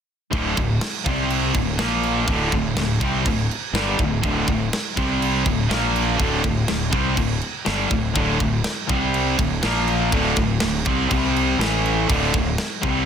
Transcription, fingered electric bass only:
0.33 D1
0.58 D1
1.06 C2
1.55 D1
1.80 A#1
2.28 D1
2.52 D1
2.76 D1
3.01 C2
3.26 D1
3.73 G1
3.99 D1
4.24 D1
4.48 D1
4.97 C2
5.46 D1
5.70 A#1
6.20 D1
6.44 D1
6.69 D1
6.93 C2
7.17 D1
7.67 G1
7.91 D1
8.16 D1
8.41 D1
8.89 C2
9.39 D1
9.64 A#1
10.12 D1
10.37 D1
10.62 D1
10.86 C2
11.11 C2
11.59 A1
12.09 D1
12.35 D1
12.84 C2

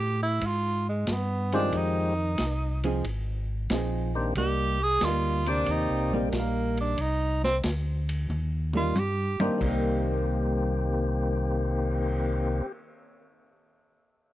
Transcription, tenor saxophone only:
Already playing: G4
0.23 E4
0.46 F4
0.89 G#3
1.12 B3
1.55 D4
1.77 D#4
4.38 G4
4.83 G#4
5.04 F4
5.49 D4
5.71 D#4
6.15 G3
6.39 A#3
6.81 D4
7.01 D#4
7.44 C4
8.77 F4
8.99 G4

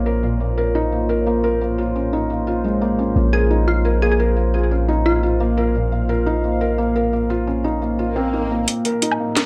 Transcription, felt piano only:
Already playing: A#3 C#4 D#4 F4 A#4
0.06 A#4
0.23 A#2
0.40 A#3
0.58 A#4
0.75 D#4
0.92 A#3
1.09 A#4
1.26 A#3
1.44 A#4
1.61 A#3
1.78 F4
1.96 C#4
2.13 D#4
2.30 A#3
2.47 F4
2.64 G#3
2.81 A#3
2.99 C#4
3.16 A#3
3.33 A#4
3.51 D#4
3.68 A#3
3.85 A#4
4.02 A#3
4.19 A#4
4.37 A#3
4.54 F4
4.71 C#4
4.88 D#4
5.06 A#3
5.23 F4
5.40 A#3
5.57 A#4
5.75 A#2
5.92 A#3
6.09 A#4
6.26 D#4
6.44 A#3
6.61 A#4
6.78 A#3
6.96 A#4
7.13 A#3
7.30 F4
7.47 C#4
7.64 D#4
7.82 A#3
7.99 F4
8.16 C4
8.33 D#4
8.51 A#3
8.68 A#3
8.85 A#4
9.02 D#4
9.20 A#3
9.37 A#4

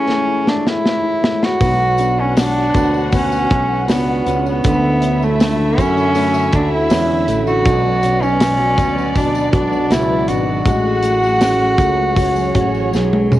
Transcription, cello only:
Already playing: C#4
0.49 D4
0.67 E4
1.45 F#4
2.21 C#4
2.39 D4
3.15 C#4
3.91 B3
4.48 B3
5.24 A3
5.79 C#4
6.55 D4
6.74 E4
7.48 F#4
8.23 C#4
9.17 D4
9.54 D4
9.92 E4
10.30 F#4
12.96 F#3
13.35 G#3

